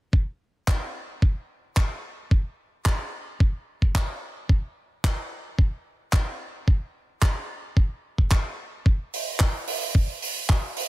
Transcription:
0, 0, Header, 1, 2, 480
1, 0, Start_track
1, 0, Tempo, 545455
1, 117, Time_signature, 4, 2, 24, 8
1, 9575, End_track
2, 0, Start_track
2, 0, Title_t, "Drums"
2, 115, Note_on_c, 9, 36, 101
2, 203, Note_off_c, 9, 36, 0
2, 596, Note_on_c, 9, 36, 104
2, 599, Note_on_c, 9, 39, 114
2, 684, Note_off_c, 9, 36, 0
2, 687, Note_off_c, 9, 39, 0
2, 1076, Note_on_c, 9, 36, 105
2, 1164, Note_off_c, 9, 36, 0
2, 1555, Note_on_c, 9, 36, 108
2, 1557, Note_on_c, 9, 39, 99
2, 1643, Note_off_c, 9, 36, 0
2, 1645, Note_off_c, 9, 39, 0
2, 2035, Note_on_c, 9, 36, 108
2, 2123, Note_off_c, 9, 36, 0
2, 2515, Note_on_c, 9, 36, 104
2, 2516, Note_on_c, 9, 39, 111
2, 2603, Note_off_c, 9, 36, 0
2, 2604, Note_off_c, 9, 39, 0
2, 2995, Note_on_c, 9, 36, 118
2, 3083, Note_off_c, 9, 36, 0
2, 3362, Note_on_c, 9, 36, 59
2, 3450, Note_off_c, 9, 36, 0
2, 3476, Note_on_c, 9, 36, 113
2, 3482, Note_on_c, 9, 39, 114
2, 3564, Note_off_c, 9, 36, 0
2, 3570, Note_off_c, 9, 39, 0
2, 3955, Note_on_c, 9, 36, 108
2, 4043, Note_off_c, 9, 36, 0
2, 4435, Note_on_c, 9, 36, 111
2, 4443, Note_on_c, 9, 39, 113
2, 4523, Note_off_c, 9, 36, 0
2, 4531, Note_off_c, 9, 39, 0
2, 4915, Note_on_c, 9, 36, 112
2, 5003, Note_off_c, 9, 36, 0
2, 5394, Note_on_c, 9, 39, 99
2, 5395, Note_on_c, 9, 36, 112
2, 5482, Note_off_c, 9, 39, 0
2, 5483, Note_off_c, 9, 36, 0
2, 5875, Note_on_c, 9, 36, 109
2, 5963, Note_off_c, 9, 36, 0
2, 6355, Note_on_c, 9, 36, 115
2, 6358, Note_on_c, 9, 39, 105
2, 6443, Note_off_c, 9, 36, 0
2, 6446, Note_off_c, 9, 39, 0
2, 6835, Note_on_c, 9, 36, 110
2, 6923, Note_off_c, 9, 36, 0
2, 7202, Note_on_c, 9, 36, 58
2, 7290, Note_off_c, 9, 36, 0
2, 7315, Note_on_c, 9, 36, 110
2, 7317, Note_on_c, 9, 39, 101
2, 7403, Note_off_c, 9, 36, 0
2, 7405, Note_off_c, 9, 39, 0
2, 7796, Note_on_c, 9, 36, 109
2, 7884, Note_off_c, 9, 36, 0
2, 8038, Note_on_c, 9, 46, 94
2, 8126, Note_off_c, 9, 46, 0
2, 8271, Note_on_c, 9, 39, 113
2, 8276, Note_on_c, 9, 36, 102
2, 8359, Note_off_c, 9, 39, 0
2, 8364, Note_off_c, 9, 36, 0
2, 8513, Note_on_c, 9, 46, 107
2, 8601, Note_off_c, 9, 46, 0
2, 8755, Note_on_c, 9, 36, 108
2, 8843, Note_off_c, 9, 36, 0
2, 8994, Note_on_c, 9, 46, 101
2, 9082, Note_off_c, 9, 46, 0
2, 9235, Note_on_c, 9, 36, 111
2, 9237, Note_on_c, 9, 39, 96
2, 9323, Note_off_c, 9, 36, 0
2, 9325, Note_off_c, 9, 39, 0
2, 9473, Note_on_c, 9, 46, 104
2, 9561, Note_off_c, 9, 46, 0
2, 9575, End_track
0, 0, End_of_file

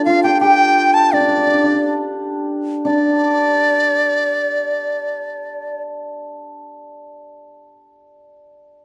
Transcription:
0, 0, Header, 1, 3, 480
1, 0, Start_track
1, 0, Tempo, 717703
1, 745, Time_signature, 2, 2, 24, 8
1, 745, Tempo, 809717
1, 1225, Tempo, 956938
1, 3145, Tempo, 983607
1, 4657, End_track
2, 0, Start_track
2, 0, Title_t, "Dizi"
2, 0, Program_c, 0, 73
2, 32, Note_on_c, 0, 77, 81
2, 135, Note_off_c, 0, 77, 0
2, 154, Note_on_c, 0, 79, 72
2, 256, Note_off_c, 0, 79, 0
2, 269, Note_on_c, 0, 79, 92
2, 627, Note_on_c, 0, 81, 80
2, 637, Note_off_c, 0, 79, 0
2, 758, Note_on_c, 0, 74, 72
2, 767, Note_off_c, 0, 81, 0
2, 1231, Note_off_c, 0, 74, 0
2, 1688, Note_on_c, 0, 74, 67
2, 3175, Note_off_c, 0, 74, 0
2, 4657, End_track
3, 0, Start_track
3, 0, Title_t, "Hammered dulcimer"
3, 0, Program_c, 1, 15
3, 0, Note_on_c, 1, 62, 65
3, 0, Note_on_c, 1, 67, 53
3, 0, Note_on_c, 1, 69, 53
3, 43, Note_on_c, 1, 65, 72
3, 159, Note_off_c, 1, 67, 0
3, 162, Note_on_c, 1, 67, 66
3, 272, Note_off_c, 1, 67, 0
3, 275, Note_on_c, 1, 67, 74
3, 656, Note_off_c, 1, 69, 0
3, 751, Note_off_c, 1, 62, 0
3, 754, Note_on_c, 1, 62, 51
3, 795, Note_off_c, 1, 62, 0
3, 797, Note_on_c, 1, 62, 39
3, 840, Note_off_c, 1, 62, 0
3, 842, Note_on_c, 1, 62, 44
3, 896, Note_off_c, 1, 62, 0
3, 898, Note_on_c, 1, 62, 36
3, 951, Note_off_c, 1, 62, 0
3, 953, Note_on_c, 1, 62, 41
3, 993, Note_off_c, 1, 62, 0
3, 995, Note_on_c, 1, 62, 38
3, 1051, Note_off_c, 1, 62, 0
3, 1053, Note_on_c, 1, 62, 46
3, 1111, Note_off_c, 1, 62, 0
3, 1113, Note_on_c, 1, 62, 35
3, 1687, Note_off_c, 1, 62, 0
3, 1689, Note_on_c, 1, 62, 73
3, 1983, Note_off_c, 1, 65, 0
3, 2041, Note_off_c, 1, 67, 0
3, 3550, Note_off_c, 1, 62, 0
3, 4657, End_track
0, 0, End_of_file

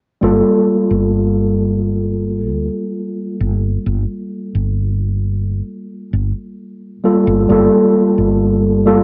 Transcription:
0, 0, Header, 1, 3, 480
1, 0, Start_track
1, 0, Key_signature, -2, "minor"
1, 0, Tempo, 909091
1, 120, Time_signature, 4, 2, 24, 8
1, 4771, End_track
2, 0, Start_track
2, 0, Title_t, "Tine electric piano"
2, 0, Program_c, 0, 4
2, 111, Note_on_c, 0, 55, 84
2, 116, Note_on_c, 0, 58, 74
2, 121, Note_on_c, 0, 65, 77
2, 126, Note_on_c, 0, 69, 94
2, 204, Control_c, 0, 64, 127
2, 3668, Note_off_c, 0, 55, 0
2, 3670, Note_off_c, 0, 58, 0
2, 3673, Note_off_c, 0, 65, 0
2, 3676, Note_off_c, 0, 69, 0
2, 3716, Note_on_c, 0, 55, 76
2, 3719, Note_on_c, 0, 58, 69
2, 3721, Note_on_c, 0, 65, 71
2, 3723, Note_on_c, 0, 69, 85
2, 3727, Control_c, 0, 64, 0
2, 3803, Control_c, 0, 64, 127
2, 3910, Note_off_c, 0, 55, 0
2, 3912, Note_off_c, 0, 58, 0
2, 3913, Note_off_c, 0, 65, 0
2, 3914, Note_off_c, 0, 69, 0
2, 3953, Note_on_c, 0, 55, 79
2, 3958, Note_on_c, 0, 58, 71
2, 3963, Note_on_c, 0, 65, 73
2, 3968, Control_c, 0, 64, 0
2, 3970, Note_on_c, 0, 69, 86
2, 4045, Control_c, 0, 64, 127
2, 4648, Note_off_c, 0, 55, 0
2, 4650, Note_off_c, 0, 58, 0
2, 4653, Note_off_c, 0, 65, 0
2, 4656, Note_off_c, 0, 69, 0
2, 4676, Note_on_c, 0, 55, 86
2, 4679, Note_on_c, 0, 58, 79
2, 4682, Note_on_c, 0, 65, 77
2, 4683, Note_on_c, 0, 69, 96
2, 4771, Note_off_c, 0, 55, 0
2, 4771, Note_off_c, 0, 58, 0
2, 4771, Note_off_c, 0, 65, 0
2, 4771, Note_off_c, 0, 69, 0
2, 4771, End_track
3, 0, Start_track
3, 0, Title_t, "Fretless electric bass"
3, 0, Program_c, 1, 35
3, 118, Note_on_c, 1, 31, 88
3, 213, Note_off_c, 1, 31, 0
3, 478, Note_on_c, 1, 31, 77
3, 1320, Note_off_c, 1, 31, 0
3, 1320, Note_on_c, 1, 38, 72
3, 1414, Note_off_c, 1, 38, 0
3, 1798, Note_on_c, 1, 31, 86
3, 1985, Note_off_c, 1, 31, 0
3, 2040, Note_on_c, 1, 31, 94
3, 2134, Note_off_c, 1, 31, 0
3, 2401, Note_on_c, 1, 31, 80
3, 2957, Note_off_c, 1, 31, 0
3, 3238, Note_on_c, 1, 31, 79
3, 3333, Note_off_c, 1, 31, 0
3, 3840, Note_on_c, 1, 31, 100
3, 3932, Note_off_c, 1, 31, 0
3, 3958, Note_on_c, 1, 31, 96
3, 4053, Note_off_c, 1, 31, 0
3, 4319, Note_on_c, 1, 31, 76
3, 4771, Note_off_c, 1, 31, 0
3, 4771, End_track
0, 0, End_of_file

